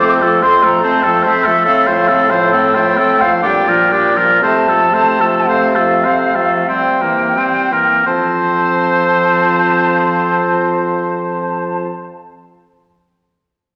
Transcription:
Already playing: F2 D6
0.00 A3 C4 C5
0.22 F3 A3 A4
0.42 A3 C4 C5 C6
0.63 F3 A3 A4 A#5
0.83 A3 C4 C5 A5
1.03 F3 A3 A4
1.23 A3 C4 C5 E5
1.44 F3 A3 A4
1.65 A2 A3 C4 A4 F5
1.87 F3 A3 C5
2.08 A3 C4 A4
2.30 F3 A3 C5
2.51 A3 C4 A4 G5
2.74 F3 A3 C5
2.96 A3 C4 A4
3.19 A3 C5 F5
3.23 F3
3.42 A#2 G3 D4 G4 G5
3.65 F3 F4 A#4
3.90 G3 D4 G4
4.14 F3 F4 A#4
4.40 C3 A3 C4 C5 A5
4.67 F3 A3 A4
4.92 A3 C4 C5
5.19 F3 A3 A4
5.45 A3 C4 C5 F5
5.74 F3 A3 A4
6.04 A3 C4 C5
6.35 F3 A3 A4
6.67 G3 C4 C5 G5
7.01 E3 A#3 A#4
7.35 G3 C4 C5
7.71 E3 A#3 A#4
8.06 F2 F3 C4 C5 A5

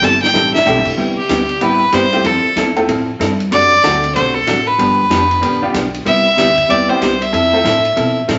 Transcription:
0.02 G1 C3 E3 G3 C4 E4 A4 A5, snare, hi-hat pedal
0.23 G5, snare
0.34 A1 C3 E3 G3 C4 E4 A4, snare
0.54 E5, snare
0.65 B1 C3 E3 G3 A3 C4 D4 E4 G4 A4, snare, hi-hat pedal
0.85 muted upright bass stroke, kick, crash
0.97 C2 C3 G3 B3 E4 G4
1.17 G4
1.29 D2 C3 G3 B3 E4 G4, snare, hi-hat pedal, ride
1.49 ride
1.61 A2 C3 G3 B3 C4 E4 G4 B4, ride
1.92 G2 C3 G3 B3 E4 G4 C5, snare, hi-hat pedal, ride
2.12 A3 C4 E4 F4 G4, ride
2.24 F2 F3 C4 E4 A4, ride
2.56 E2 F3 C4 E4 A4, snare, hi-hat pedal, ride
2.76 A3 C4 E4 F4 A4, ride
2.88 A2 F3 C4 E4 A4, ride
3.19 G2 F3 C4 E4 A4, snare, hi-hat pedal, ride
3.40 ride
3.51 F#2 C3 F#3 A3 D4 F#4 D5, ride
3.84 D2 C3 F#3 A3 C4 D4 F#4 A4, snare, hi-hat pedal, ride
4.04 ride
4.15 B1 C3 F#3 A3 D4 F#4 C5, ride
4.34 A4
4.47 A1 C3 F#3 A3 D4 F#4, snare, hi-hat pedal, ride
4.67 B4
4.78 G1 D3 F3 B3 D4 G4, ride
5.10 F1 D3 F3 B3 D4 G4, snare, hi-hat pedal, ride
5.31 ride
5.41 A1 D3 F3 B3 D4 G4, ride
5.62 G3 B3 D4 F4 G4
5.73 B1 D3 F3 B3 D4 G4, snare, hi-hat pedal, ride
5.94 ride
6.05 C2 C3 G3 B3 E4 G4 E5, ride
6.37 D2 C3 G3 B3 E4 G4, snare, hi-hat pedal, ride
6.58 kick, ride
6.69 E2 C3 G3 B3 E4 G4 D5, ride
6.89 G3 B3 C4 E4 G4 C5
7.01 C2 C3 G3 B3 E4 G4, snare, hi-hat pedal, ride
7.22 E5, ride
7.32 F2 F3 C4 E4 A4, ride
7.53 A3 C4 E4 F4 A4
7.64 A2 F3 C4 E4 A4, snare, hi-hat pedal, ride
7.85 ride
7.96 B2 F3 C4 E4 A4, ride
8.28 A2 F3 C4 E4 A4, snare, hi-hat pedal, ride

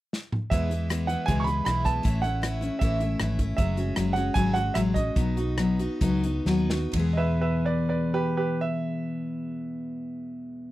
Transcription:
0.13 snare
0.32 mid tom
0.50 E2 B2 E3 G#3 B3 E4 E5, kick, closed hi-hat
0.70 E3 G#3 B3 E4, closed hi-hat
0.89 E3 G#3 B3 E4, cross-stick, closed hi-hat
1.07 E3 G#3 B3 E4 F#5, closed hi-hat
1.26 C#2 E2 B2 E3 G#3 B3 E4 G#5, kick, closed hi-hat
1.40 C#6
1.44 B3 E4 B5, closed hi-hat
1.48 E3 G#3
1.65 B1 E3 G#3 B3 E4 B5, cross-stick, closed hi-hat
1.84 E3 G#3 B3 E4 A5, kick, closed hi-hat
2.03 A1 A2 E3 A3 C#4 E4, kick, closed hi-hat
2.22 A3 C#4 E4 F#5, closed hi-hat
2.42 E3 A3 C#4 E4, cross-stick, closed hi-hat
2.61 A3 C#4 E4, closed hi-hat
2.79 A1 A2 E3 A3 C#4 E5, kick, closed hi-hat
2.83 E4
3.00 A3 C#4 E4, closed hi-hat
3.20 G#1 E3 A3 C#4 E4, cross-stick, closed hi-hat
3.39 A3 C#4 E4, kick, closed hi-hat
3.57 F#1 F#3 G#3 C#4 F#4 E5, kick, closed hi-hat
3.77 G#3 C#4 F#4, closed hi-hat
3.96 F#1 F#3 G#3 C#4 F#4, cross-stick, closed hi-hat
4.13 F#4 F#5, closed hi-hat
4.17 G#3 C#4
4.34 G#1 F#3 G#3 C#4 F#4 G#5, kick, closed hi-hat
4.54 G#3 C#4 F#4 F#5, closed hi-hat
4.74 A1 F#3 G#3 C#4 F#4 E5, cross-stick, closed hi-hat
4.94 G#3 C#4 F#4 D#5, kick, closed hi-hat
5.16 B1 B2 F#3 B3 D#4 F#4, kick, closed hi-hat
5.37 B3 D#4 F#4, closed hi-hat
5.58 F#3 B3 D#4 F#4, cross-stick, closed hi-hat
5.79 B3 D#4 F#4, closed hi-hat
6.01 C#2 B2 F#3 B3 D#4 F#4, kick, closed hi-hat
6.24 B3 D#4 F#4, closed hi-hat
6.46 D#2 F#3 B3 D#4 F#4, snare
6.70 B3 D#4 F#4, snare
6.92 E2 B2 E3, kick, ride
6.96 G#3 B3 G#4
7.13 D#5
7.17 B4 E5
7.41 B4 E5
7.65 B4 D5
7.89 B4 D5
8.14 G4 B4
8.37 G4 B4
8.61 E5

